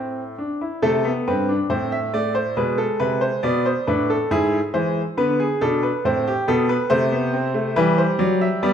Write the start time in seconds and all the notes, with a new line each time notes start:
Already playing: A2 C4 C5
0.38 D4
0.61 E4
0.82 C3 A3 A4
1.05 B3
1.27 G2 C4 B4
1.49 D4
1.70 A2 C4 C5
1.92 E5
2.14 A3 D5
2.35 C5
2.57 B2 G#3 B4
2.78 A4
3.00 C3 B4
3.21 C5
3.43 B2 B3 D5
3.66 C5
3.87 A2 D4 B4
4.10 A4
4.31 G#2 E4 G#4
4.74 E3 G#3 C5
5.17 D3 B3 B4
5.40 G#4
5.61 B2 D4 A4
5.83 B4
6.05 A2 C4 C5
6.27 G4
6.48 B2 B3 A4
6.69 B4
6.90 C3 A3 C5
7.12 B3
7.34 C4
7.54 A3
7.76 E3 G3 B4
7.98 C5
8.19 F#3 D5
8.41 E5
8.63 G3 B3 D5